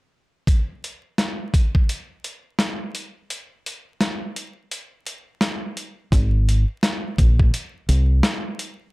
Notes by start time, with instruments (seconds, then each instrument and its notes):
0.47 kick, closed hi-hat
0.84 closed hi-hat
1.18 snare, closed hi-hat
1.54 kick, closed hi-hat
1.75 kick
1.89 closed hi-hat
2.24 closed hi-hat
2.59 snare, closed hi-hat
2.95 closed hi-hat
3.30 closed hi-hat
3.66 closed hi-hat
4.01 snare, closed hi-hat
4.36 closed hi-hat
4.71 closed hi-hat
5.07 closed hi-hat
5.41 snare, closed hi-hat
5.77 closed hi-hat
6.12 fingered electric bass G#1, kick, closed hi-hat
6.49 closed hi-hat
6.83 snare, closed hi-hat
7.18 fingered electric bass A#1, kick, closed hi-hat
7.40 kick
7.54 closed hi-hat
7.89 fingered electric bass C2, closed hi-hat
8.23 snare, closed hi-hat
8.59 closed hi-hat